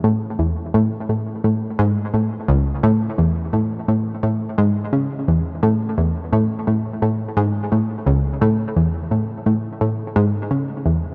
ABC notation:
X:1
M:4/4
L:1/8
Q:1/4=86
K:A
V:1 name="Synth arpeggio sound" clef=bass
A,, E,, A,, A,, A,, G,, A,, C,, | A,, E,, A,, A,, A,, G,, C, E,, | A,, E,, A,, A,, A,, G,, A,, C,, | A,, E,, A,, A,, A,, G,, C, E,, |]